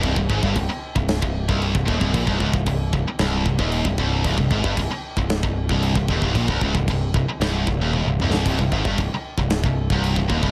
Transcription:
<<
  \new Staff \with { instrumentName = "Distorted electric guitar" } { \clef bass \time 4/4 \key c \phrygian \tempo 4 = 114 c,16 c,16 aes,16 g,16 c,16 r8 c,8 c,8 c,8 c,16 ees,16 c,16 | bes,16 c,16 des,16 c,16 c,8 c,16 r16 c,8 c,16 ees,8 c,16 c,8 | c,16 c,16 aes,16 g,16 c,16 r8 c,8 c,8 c,8 c,16 ees,16 c,16 | bes,16 c,16 des,16 c,16 c,8 c,16 r16 c,8 c,16 ees,8 c,16 c,8 |
c,16 c,16 aes,16 g,16 c,16 r8 c,8 c,8 c,8 c,16 ees,16 c,16 | }
  \new Staff \with { instrumentName = "Picked electric bass" } { \clef bass \time 4/4 \key c \phrygian c,,16 c,,16 aes,,16 g,,16 c,,16 r8 c,,8 c,,8 c,,8 c,,16 ees,,16 c,,16 | bes,,16 c,,16 des,,16 c,,16 c,,8 c,,16 r16 c,,8 c,,16 ees,,8 c,,16 c,,8 | c,,16 c,,16 aes,,16 g,,16 c,,16 r8 c,,8 c,,8 c,,8 c,,16 ees,,16 c,,16 | bes,,16 c,,16 des,,16 c,,16 c,,8 c,,16 r16 c,,8 c,,16 ees,,8 c,,16 c,,8 |
c,,16 c,,16 aes,,16 g,,16 c,,16 r8 c,,8 c,,8 c,,8 c,,16 ees,,16 c,,16 | }
  \new DrumStaff \with { instrumentName = "Drums" } \drummode { \time 4/4 <cymc bd>16 bd16 bd16 bd16 <cymc bd>8. bd16 <cymc sn>16 bd8 bd16 cymc16 bd16 bd16 bd16 | <cymc bd>16 bd16 bd16 bd16 <cymc bd>8 bd8 <cymc sn>8 bd16 bd16 cymc16 bd16 bd8 | <cymc bd>16 bd16 bd16 bd16 <cymc bd>8. bd16 <cymc sn>16 bd8 bd16 cymc16 bd16 bd16 bd16 | <cymc bd>16 bd16 bd16 bd16 <cymc bd>8 bd8 <cymc sn>8 bd8 tommh8 toml16 sn16 |
<cymc bd>16 bd16 bd16 bd16 <cymc bd>8. bd16 <cymc sn>16 bd8 bd16 cymc16 bd16 bd16 bd16 | }
>>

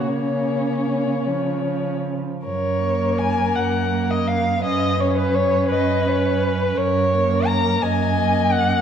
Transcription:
<<
  \new Staff \with { instrumentName = "Violin" } { \time 6/8 \key fis \major \tempo 4. = 55 cis'2~ cis'8 r8 | cis''4 gis''8 fis''8. dis''16 eis''8 | dis''8 cis''16 b'16 cis''8 b'4. | cis''4 ais''8 gis''4 fis''8 | }
  \new Staff \with { instrumentName = "Violin" } { \time 6/8 \key fis \major cis''2~ cis''8 r8 | ais'2. | b'4. dis''8 cis''8 b'8 | ais'4. dis''4. | }
  \new Staff \with { instrumentName = "Viola" } { \time 6/8 \key fis \major ais4. eis4 r8 | r8 ais4. ais4 | cis'8 cis'4. cis'4 | r8 ais4. ais4 | }
  \new Staff \with { instrumentName = "Cello" } { \clef bass \time 6/8 \key fis \major cis2~ cis8 r8 | fis,4. fis,4. | fis,4. fis,4. | fis,4. fis,4. | }
>>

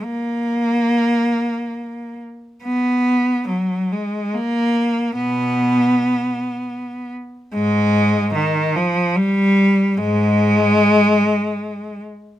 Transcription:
\new Staff \with { instrumentName = "Cello" } { \clef bass \time 6/8 \key b \lydian \tempo 4. = 49 << { ais2~ ais8 r8 | b4 fis8 gis8 ais4 | b2~ b8 r8 | \key aes \lydian aes4 ees8 f8 g4 |
aes2~ aes8 r8 | } \\ { r2. | r2. | b,4. r4. | aes,4 r2 |
aes,4. r4. | } >> }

